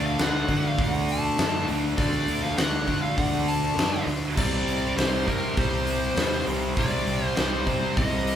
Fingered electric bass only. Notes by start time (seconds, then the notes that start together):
Already playing: D2
0.20 D2
0.49 D3
0.79 D2
1.39 F#2
1.69 D2
1.99 D2
2.29 D2
2.58 D2
2.87 D3
3.18 D2
3.77 F#2
4.07 D2
4.37 C2
4.67 C2
4.97 C2
5.28 C3
5.57 C2
6.17 D#2
6.47 C2
6.78 C2
7.07 C2
7.38 C2
7.67 C3
7.97 C2